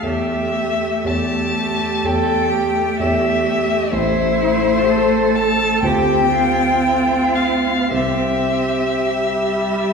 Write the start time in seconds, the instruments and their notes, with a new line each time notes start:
0.02 grand piano E2 G4 A4 C#5, viola A3, cello G4, violin E5
1.04 grand piano E2 G4 A4 C#5, cello G4, violin A5
2.04 grand piano E2 G4 A4 C#5, cello A4, violin G5
2.53 cello G4
2.99 grand piano E2 G4 A4 C#5, violin E5
3.92 grand piano A1 E4 A4 C5, viola A3, cello E4, violin C5
4.89 cello A4
5.36 violin A5
5.82 grand piano D2 F4 A4 C5, cello G4, violin G5
5.86 viola C4
6.35 cello F4
7.35 violin F5
7.91 grand piano C2 G4 C5, viola C4, cello G4, violin E5
9.10 viola G3